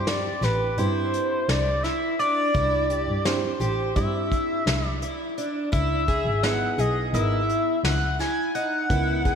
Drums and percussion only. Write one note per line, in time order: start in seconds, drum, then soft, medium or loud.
0.07 snare loud
0.07 closed hi-hat medium
0.43 snare soft
0.43 closed hi-hat medium
0.78 closed hi-hat medium
1.14 closed hi-hat medium
1.49 snare loud
1.49 closed hi-hat medium
1.84 snare soft
1.84 closed hi-hat soft
2.20 closed hi-hat medium
2.55 kick medium
2.55 closed hi-hat medium
2.90 closed hi-hat soft
3.25 snare loud
3.25 closed hi-hat medium
3.61 closed hi-hat medium
3.96 kick medium
3.96 closed hi-hat medium
4.32 kick medium
4.32 closed hi-hat medium
4.67 snare loud
4.67 closed hi-hat medium
5.02 closed hi-hat medium
5.38 closed hi-hat medium
5.73 kick loud
5.73 closed hi-hat medium
6.08 kick medium
6.08 closed hi-hat medium
6.43 snare loud
6.43 closed hi-hat medium
6.79 closed hi-hat medium
7.14 closed hi-hat medium
7.49 closed hi-hat medium
7.85 snare loud
7.85 closed hi-hat medium
8.20 snare soft
8.20 closed hi-hat soft
8.55 closed hi-hat medium
8.90 kick medium
8.90 closed hi-hat medium
9.25 kick medium
9.25 closed hi-hat soft